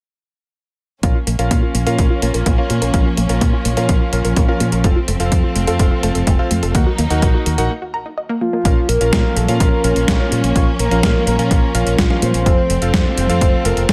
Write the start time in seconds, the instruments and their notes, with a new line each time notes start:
1.03 fingered electric bass A#1, string section F3 A#3 C#4, synth arpeggio sound A#3, electric grand piano C#4 F4 A#4 F5, kick, closed hi-hat
1.15 synth arpeggio sound F4
1.27 fingered electric bass A#1, synth arpeggio sound A#3, closed hi-hat
1.39 fingered electric bass A#1, electric grand piano C#4 F4 A#4 F5, synth arpeggio sound A#4, closed hi-hat
1.51 fingered electric bass A#2, synth arpeggio sound A#3, kick, closed hi-hat
1.63 synth arpeggio sound F4
1.75 fingered electric bass A#1, synth arpeggio sound A#3, closed hi-hat
1.86 fingered electric bass A#2, electric grand piano C#4 F4 A#4 F5, synth arpeggio sound A#4, closed hi-hat
1.98 fingered electric bass A#1, synth arpeggio sound A#3, kick, closed hi-hat
2.10 synth arpeggio sound F4
2.22 fingered electric bass A#1, synth arpeggio sound A#3, electric grand piano C#4 F4 A#4 F5, closed hi-hat
2.34 fingered electric bass A#1, synth arpeggio sound A#4, closed hi-hat
2.46 fingered electric bass A#1, synth arpeggio sound A#3, kick, closed hi-hat
2.58 electric grand piano C#4 F4 A#4 F5, synth arpeggio sound F4
2.70 fingered electric bass A#2, synth arpeggio sound A#3, closed hi-hat
2.82 fingered electric bass A#1, synth arpeggio sound A#4, closed hi-hat
2.94 fingered electric bass A#1, synth arpeggio sound A#3, electric grand piano C#4 F4 A#4 F5, kick, closed hi-hat
3.06 synth arpeggio sound F4
3.17 fingered electric bass A#1, synth arpeggio sound A#3, closed hi-hat
3.29 fingered electric bass A#1, electric grand piano C#4 F4 A#4 F5, synth arpeggio sound A#4, closed hi-hat
3.41 fingered electric bass A#2, synth arpeggio sound A#3, kick, closed hi-hat
3.53 synth arpeggio sound F4
3.65 fingered electric bass A#1, synth arpeggio sound A#3, closed hi-hat
3.77 fingered electric bass A#2, electric grand piano C#4 F4 A#4 F5, synth arpeggio sound A#4, closed hi-hat
3.89 fingered electric bass A#1, synth arpeggio sound A#3, kick, closed hi-hat
4.01 synth arpeggio sound F4
4.13 fingered electric bass A#1, synth arpeggio sound A#3, electric grand piano C#4 F4 A#4 F5, closed hi-hat
4.25 fingered electric bass A#1, synth arpeggio sound A#4, closed hi-hat
4.36 fingered electric bass A#1, synth arpeggio sound A#3, kick, closed hi-hat
4.48 electric grand piano C#4 F4 A#4 F5, synth arpeggio sound F4
4.60 fingered electric bass A#2, synth arpeggio sound A#3, closed hi-hat
4.72 fingered electric bass A#1, synth arpeggio sound A#4, closed hi-hat
4.84 fingered electric bass F1, string section A3 C4, synth arpeggio sound A3, electric grand piano C4 F4 A4 F5, kick, closed hi-hat
4.96 synth arpeggio sound F4
5.08 fingered electric bass F1, synth arpeggio sound A3, closed hi-hat
5.20 fingered electric bass F1, electric grand piano C4 F4 A4 F5, synth arpeggio sound A4, closed hi-hat
5.32 fingered electric bass F2, synth arpeggio sound A3, kick, closed hi-hat
5.44 synth arpeggio sound F4
5.56 fingered electric bass F1, synth arpeggio sound A3, closed hi-hat
5.67 fingered electric bass F2, electric grand piano C4 F4 A4 F5, synth arpeggio sound A4, closed hi-hat
5.79 fingered electric bass F1, synth arpeggio sound A3, kick, closed hi-hat
5.91 synth arpeggio sound F4
6.03 fingered electric bass F1, synth arpeggio sound A3, electric grand piano C4 F4 A4 F5, closed hi-hat
6.15 fingered electric bass F1, synth arpeggio sound A4, closed hi-hat
6.27 fingered electric bass F1, synth arpeggio sound A3, kick, closed hi-hat
6.39 electric grand piano C4 F4 A4 F5, synth arpeggio sound F4
6.51 fingered electric bass F2, synth arpeggio sound A3, closed hi-hat
6.63 fingered electric bass F1, synth arpeggio sound A4, closed hi-hat
6.75 fingered electric bass D#2, string section F#3 A#3 D#4, synth arpeggio sound A#3, electric grand piano D#4 F#4 A#4 F#5, kick, closed hi-hat
6.87 synth arpeggio sound F#4
6.98 fingered electric bass D#2, synth arpeggio sound A#3, closed hi-hat
7.10 fingered electric bass D#2, electric grand piano D#4 F#4 A#4 F#5, synth arpeggio sound A#4, closed hi-hat
7.22 fingered electric bass A#1, synth arpeggio sound A#3, kick, closed hi-hat
7.34 synth arpeggio sound F#4
7.46 fingered electric bass D#2, synth arpeggio sound A#3, closed hi-hat
7.58 fingered electric bass A#1, electric grand piano D#4 F#4 A#4 F#5, synth arpeggio sound A#4, closed hi-hat
7.70 synth arpeggio sound A#3
7.82 synth arpeggio sound F#4
7.94 synth arpeggio sound A#5
8.06 synth arpeggio sound D#4
8.17 synth arpeggio sound D#5
8.29 synth arpeggio sound A#3
8.41 synth arpeggio sound A#3, soft synth lead F4
8.53 synth arpeggio sound A#3
8.65 fingered electric bass A#1, string section F3 A#3 C#4, electric grand piano C#4 F4 A#4 F5, kick, closed hi-hat
8.89 fingered electric bass A#1, soft synth lead A#4, closed hi-hat
9.01 fingered electric bass A#1, electric grand piano C#4 F4 A#4 F5, closed hi-hat
9.13 fingered electric bass A#2, soft synth lead A#4, kick, snare, closed hi-hat
9.36 fingered electric bass A#1, soft synth lead A4, closed hi-hat
9.48 fingered electric bass A#2, electric grand piano C#4 F4 A#4 F5, closed hi-hat
9.60 fingered electric bass A#1, soft synth lead A#4, kick, closed hi-hat
9.84 fingered electric bass A#1, electric grand piano C#4 F4 A#4 F5, soft synth lead A#4, closed hi-hat
9.96 fingered electric bass A#1, closed hi-hat
10.08 fingered electric bass A#1, kick, snare, closed hi-hat
10.20 electric grand piano C#4 F4 A#4 F5
10.32 fingered electric bass A#2, closed hi-hat
10.44 fingered electric bass A#1, closed hi-hat
10.56 fingered electric bass A#1, electric grand piano C#4 F4 A#4 F5, soft synth lead C#5, kick, closed hi-hat
10.79 fingered electric bass A#1, soft synth lead A#4, closed hi-hat
10.91 fingered electric bass A#1, electric grand piano C#4 F4 A#4 F5, closed hi-hat
11.03 fingered electric bass A#2, kick, snare, closed hi-hat
11.27 fingered electric bass A#1, soft synth lead A#4, closed hi-hat
11.39 fingered electric bass A#2, electric grand piano C#4 F4 A#4 F5, closed hi-hat
11.51 fingered electric bass A#1, soft synth lead A#4, kick, closed hi-hat
11.75 fingered electric bass A#1, electric grand piano C#4 F4 A#4 F5, closed hi-hat
11.87 fingered electric bass A#1, closed hi-hat
11.99 fingered electric bass A#1, soft synth lead F4, kick, snare, closed hi-hat
12.10 electric grand piano C#4 F4 A#4 F5, snare
12.22 fingered electric bass A#2, soft synth lead C5, closed hi-hat
12.34 fingered electric bass A#1, closed hi-hat
12.46 fingered electric bass F1, string section A3 C4, electric grand piano C4 F4 A4 F5, kick, closed hi-hat
12.70 fingered electric bass F1, closed hi-hat
12.82 fingered electric bass F1, electric grand piano C4 F4 A4 F5, closed hi-hat
12.94 fingered electric bass F2, kick, snare, closed hi-hat
13.18 fingered electric bass F1, soft synth lead C5, closed hi-hat
13.29 fingered electric bass F2, electric grand piano C4 F4 A4 F5, closed hi-hat
13.41 fingered electric bass F1, kick, closed hi-hat
13.65 fingered electric bass F1, electric grand piano C4 F4 A4 F5, soft synth lead A#4, closed hi-hat
13.77 fingered electric bass F1, closed hi-hat
13.89 soft synth lead A4, kick, snare, closed hi-hat